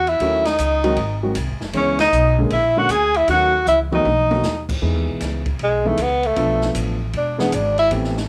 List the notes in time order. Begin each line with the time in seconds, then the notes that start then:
Already playing: E2 F#4
0.07 E4 E5, ride
0.20 D#2 D#3 F#3 A3 C#4 F#4, kick, ride
0.45 D#4 D#5, snare, ride
0.59 C#2, kick, hi-hat pedal, ride
0.83 D#3 F#3 G#3 C4 F#4, ride
0.97 G#1, kick, ride
1.23 D#3 F#3 G#3 C4 F#4
1.35 C2, kick, hi-hat pedal, ride
1.48 G#1
1.60 F#1, snare
1.73 C#2 E3 G#3 B3 C#4 G#4 C#5, kick, ride
1.99 D#4 D#5, snare, ride
2.12 B1, hi-hat pedal
2.38 D3 G#3 A#3 C#4 G#4
2.50 A#1 E4 E5, kick, ride
2.76 D3 G#3 A#3 C#4 F#4 F#5
2.89 D2 G#4 G#5, kick, hi-hat pedal, ride
3.14 E4 E5, ride
3.28 D#2 D#3 F#3 A3 C#4 F#4 F#5, kick, ride
3.66 C#2 E4 E5, hi-hat pedal, mid tom
3.92 D#3 F#3 A3 B3 D#4 F#4 D#5, mid tom
4.05 B1, high tom
4.31 D#3 F#3 A3 B3 F#4, high tom
4.43 D#2, snare, hi-hat pedal
4.69 kick, crash
4.82 E2 E3 G#3 B3 D#4 G#4, kick
4.94 D#2
5.07 B1
5.20 C#2, kick, snare, hi-hat pedal, ride
5.46 kick, ride
5.59 B1, kick, ride
5.64 G#3
5.85 E3 G#3 A3 B3 D#4 G#4
5.97 C#2, kick, hi-hat pedal, ride
6.02 B3
6.23 A3, ride
6.36 B1 F3 A3 B3 D4 A4, kick, ride
6.62 snare
6.75 A1, kick, hi-hat pedal, ride
7.13 E1 D4, kick, ride
7.38 E3 G#3 B3 D4 G#4, snare
7.52 G#1 D4, kick, hi-hat pedal, ride
7.78 E4, ride
7.91 A1 E3 A3 B3 C4 G4, kick, ride
8.04 snare
8.17 snare